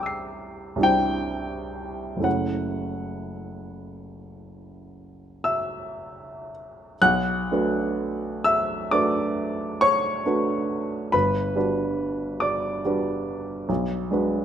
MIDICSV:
0, 0, Header, 1, 2, 480
1, 0, Start_track
1, 0, Key_signature, 2, "minor"
1, 0, Tempo, 877193
1, 703, Tempo, 967742
1, 1183, Time_signature, 9, 3, 24, 8
1, 1183, Tempo, 1003344
1, 1663, Tempo, 1060071
1, 2143, Tempo, 1125704
1, 2623, Tempo, 1050788
1, 3103, Tempo, 1003344
1, 3583, Tempo, 946372
1, 4063, Tempo, 925926
1, 4543, Tempo, 881057
1, 5503, Tempo, 846262
1, 7385, End_track
2, 0, Start_track
2, 0, Title_t, "Grand piano"
2, 0, Program_c, 0, 0
2, 0, Control_c, 0, 64, 127
2, 0, Note_on_c, 0, 36, 49
2, 0, Note_on_c, 0, 55, 39
2, 0, Note_on_c, 0, 62, 36
2, 0, Note_on_c, 0, 64, 38
2, 0, Note_on_c, 0, 72, 41
2, 0, Note_on_c, 0, 79, 37
2, 0, Note_on_c, 0, 82, 96
2, 0, Note_on_c, 0, 86, 32
2, 16, Note_on_c, 0, 88, 33
2, 34, Note_on_c, 0, 96, 33
2, 408, Note_off_c, 0, 36, 0
2, 415, Note_off_c, 0, 55, 0
2, 416, Note_on_c, 0, 36, 47
2, 420, Note_off_c, 0, 62, 0
2, 425, Note_off_c, 0, 64, 0
2, 425, Note_on_c, 0, 55, 38
2, 430, Note_off_c, 0, 72, 0
2, 430, Note_on_c, 0, 62, 38
2, 443, Note_on_c, 0, 64, 37
2, 447, Note_off_c, 0, 79, 0
2, 453, Note_off_c, 0, 82, 0
2, 453, Note_on_c, 0, 72, 40
2, 456, Note_on_c, 0, 79, 92
2, 1140, Note_on_c, 0, 30, 40
2, 1146, Note_off_c, 0, 36, 0
2, 1151, Note_off_c, 0, 55, 0
2, 1151, Note_on_c, 0, 57, 31
2, 1153, Note_off_c, 0, 62, 0
2, 1156, Note_off_c, 0, 64, 0
2, 1158, Note_on_c, 0, 61, 30
2, 1163, Note_off_c, 0, 72, 0
2, 1164, Note_on_c, 0, 64, 30
2, 1169, Note_off_c, 0, 86, 0
2, 1173, Note_on_c, 0, 73, 33
2, 1177, Note_on_c, 0, 78, 71
2, 1178, Note_off_c, 0, 88, 0
2, 1184, Note_off_c, 0, 79, 0
2, 1186, Note_off_c, 0, 96, 0
2, 1192, Control_c, 0, 64, 0
2, 1272, Control_c, 0, 64, 127
2, 2623, Note_on_c, 0, 88, 70
2, 2627, Note_on_c, 0, 76, 55
2, 3101, Note_off_c, 0, 78, 0
2, 3311, Note_off_c, 0, 30, 0
2, 3316, Note_off_c, 0, 57, 0
2, 3319, Note_off_c, 0, 61, 0
2, 3322, Note_off_c, 0, 64, 0
2, 3327, Note_off_c, 0, 73, 0
2, 3333, Note_off_c, 0, 76, 0
2, 3350, Note_off_c, 0, 88, 0
2, 3353, Note_on_c, 0, 90, 100
2, 3354, Note_on_c, 0, 35, 59
2, 3358, Note_on_c, 0, 78, 76
2, 3359, Control_c, 0, 64, 0
2, 3432, Control_c, 0, 64, 127
2, 3579, Note_off_c, 0, 35, 0
2, 3593, Note_on_c, 0, 57, 43
2, 3595, Note_on_c, 0, 62, 40
2, 3597, Note_on_c, 0, 66, 40
2, 3600, Note_on_c, 0, 71, 44
2, 4048, Note_off_c, 0, 78, 0
2, 4064, Note_on_c, 0, 88, 89
2, 4066, Note_off_c, 0, 90, 0
2, 4070, Note_on_c, 0, 76, 66
2, 4292, Note_off_c, 0, 57, 0
2, 4293, Note_off_c, 0, 62, 0
2, 4294, Note_off_c, 0, 66, 0
2, 4294, Note_off_c, 0, 76, 0
2, 4296, Note_off_c, 0, 71, 0
2, 4308, Note_off_c, 0, 88, 0
2, 4308, Note_on_c, 0, 86, 80
2, 4313, Note_on_c, 0, 62, 39
2, 4313, Note_on_c, 0, 74, 68
2, 4314, Note_on_c, 0, 57, 38
2, 4317, Note_on_c, 0, 66, 36
2, 4320, Note_on_c, 0, 71, 39
2, 4767, Note_off_c, 0, 74, 0
2, 4784, Note_on_c, 0, 85, 93
2, 4786, Note_off_c, 0, 86, 0
2, 4789, Note_on_c, 0, 73, 69
2, 5007, Note_off_c, 0, 57, 0
2, 5007, Note_off_c, 0, 62, 0
2, 5009, Note_off_c, 0, 66, 0
2, 5010, Note_off_c, 0, 71, 0
2, 5027, Note_on_c, 0, 57, 41
2, 5029, Note_on_c, 0, 62, 40
2, 5032, Note_on_c, 0, 66, 40
2, 5034, Note_on_c, 0, 71, 45
2, 5483, Note_off_c, 0, 57, 0
2, 5484, Note_off_c, 0, 73, 0
2, 5485, Note_off_c, 0, 62, 0
2, 5486, Note_off_c, 0, 66, 0
2, 5487, Note_off_c, 0, 71, 0
2, 5499, Note_on_c, 0, 83, 81
2, 5504, Note_off_c, 0, 85, 0
2, 5504, Note_on_c, 0, 31, 51
2, 5507, Note_on_c, 0, 71, 67
2, 5515, Control_c, 0, 64, 0
2, 5608, Control_c, 0, 64, 127
2, 5744, Note_off_c, 0, 31, 0
2, 5744, Note_on_c, 0, 55, 40
2, 5747, Note_off_c, 0, 71, 0
2, 5749, Note_on_c, 0, 62, 42
2, 5752, Note_on_c, 0, 66, 39
2, 5755, Note_on_c, 0, 71, 46
2, 6225, Note_on_c, 0, 86, 76
2, 6230, Note_off_c, 0, 83, 0
2, 6234, Note_on_c, 0, 74, 61
2, 6447, Note_off_c, 0, 55, 0
2, 6450, Note_off_c, 0, 62, 0
2, 6451, Note_off_c, 0, 66, 0
2, 6453, Note_off_c, 0, 71, 0
2, 6480, Note_on_c, 0, 55, 39
2, 6481, Note_on_c, 0, 66, 39
2, 6484, Note_on_c, 0, 62, 36
2, 6487, Note_on_c, 0, 71, 41
2, 6933, Note_off_c, 0, 74, 0
2, 6936, Note_off_c, 0, 55, 0
2, 6936, Note_off_c, 0, 66, 0
2, 6938, Note_off_c, 0, 62, 0
2, 6939, Note_off_c, 0, 71, 0
2, 6951, Note_off_c, 0, 86, 0
2, 6954, Note_on_c, 0, 35, 56
2, 6966, Control_c, 0, 64, 0
2, 7038, Control_c, 0, 64, 127
2, 7181, Note_off_c, 0, 35, 0
2, 7192, Note_on_c, 0, 56, 41
2, 7196, Note_on_c, 0, 62, 43
2, 7201, Note_on_c, 0, 66, 41
2, 7203, Note_on_c, 0, 71, 43
2, 7385, Note_off_c, 0, 56, 0
2, 7385, Note_off_c, 0, 62, 0
2, 7385, Note_off_c, 0, 66, 0
2, 7385, Note_off_c, 0, 71, 0
2, 7385, End_track
0, 0, End_of_file